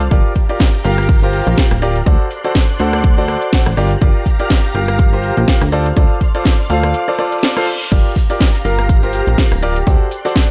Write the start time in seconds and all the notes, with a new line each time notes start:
0.00 C2, closed hi-hat
0.11 G1 F4 G4 A#4 D5 F5 A#5, kick, closed hi-hat
0.36 kick, open hi-hat
0.49 F4 G4 A#4 D5, closed hi-hat
0.60 kick, snare, closed hi-hat
0.84 G1 F4 G4 A#4 F5, open hi-hat
0.98 cross-stick, closed hi-hat
1.09 kick, closed hi-hat
1.22 F4 G4 A#4 C5
1.33 open hi-hat
1.47 A#1, closed hi-hat
1.58 F4 G4 A#4 F5, kick, snare, closed hi-hat
1.71 D1, cross-stick
1.82 F4 G4 A#4 D5, open hi-hat
1.96 closed hi-hat
2.06 D2 F#4 A4 C5 D5 C6 F#6, kick, closed hi-hat
2.31 open hi-hat
2.44 F#4 A4 C5 D5, closed hi-hat
2.55 kick, snare, closed hi-hat
2.79 D2 F#4 A4 C5 F#5, open hi-hat
2.93 cross-stick, closed hi-hat
3.04 kick, closed hi-hat
3.18 F#4 A4 C5 D5
3.28 cross-stick, open hi-hat
3.42 closed hi-hat
3.53 F#4 A4 C5 F#5, kick, snare, closed hi-hat
3.66 A1, cross-stick
3.77 G1 F4 G4 A#4 D5 F5 A#5, open hi-hat
3.91 closed hi-hat
4.01 G1 F4 G4 A#4 D5, kick, closed hi-hat
4.26 kick, open hi-hat
4.39 F4 G4 A#4 D5, closed hi-hat
4.50 kick, snare, closed hi-hat
4.75 G1 F4 G4 A#4 F5, open hi-hat
4.88 cross-stick, closed hi-hat
4.99 kick, closed hi-hat
5.13 F4 G4 A#4 C5
5.23 open hi-hat
5.37 A#1, closed hi-hat
5.48 F4 G4 A#4 F5, kick, snare, closed hi-hat
5.62 D2, cross-stick
5.72 F4 A4 C5 D5 C6 F6, open hi-hat
5.86 closed hi-hat
5.97 D2 F4 A4 C5 D5, kick, closed hi-hat
6.21 kick, open hi-hat
6.35 F4 A4 C5 D5, closed hi-hat
6.45 kick, snare, closed hi-hat
6.70 D2 F4 A4 C5 F5, open hi-hat
6.83 cross-stick, closed hi-hat
6.94 closed hi-hat, reverse cymbal
7.08 F4 A4 C5 D5
7.19 F4 A4 C5 D5, cross-stick, open hi-hat
7.32 closed hi-hat
7.43 snare, closed hi-hat
7.57 F4 A4 C5 F5, cross-stick
7.67 open hi-hat
7.81 closed hi-hat
7.92 G1 F4 G4 A#4 D5 F5 A#5, kick, closed hi-hat, crash
8.16 kick, snare, closed hi-hat, open hi-hat
8.30 F4 G4 A#4 D5, closed hi-hat
8.41 kick, snare, closed hi-hat
8.54 snare
8.65 G1 F4 G4 A#4 F5, closed hi-hat, open hi-hat
8.79 cross-stick, closed hi-hat
8.89 kick, closed hi-hat
9.03 F4 G4 A#4 C5, closed hi-hat
9.13 G4, closed hi-hat, open hi-hat
9.27 A#1 G4, closed hi-hat
9.38 F4 G4 A#4 F5, kick, snare, closed hi-hat, open hi-hat
9.52 D1, cross-stick
9.63 F4 G4 A#4 D5, closed hi-hat, open hi-hat
9.76 G4, closed hi-hat
9.87 D2 F#4 A4 C5 D5 C6 F#6, kick, closed hi-hat
10.11 closed hi-hat, open hi-hat
10.25 F#4 A4 C5 D5, snare, closed hi-hat
10.36 kick, snare, closed hi-hat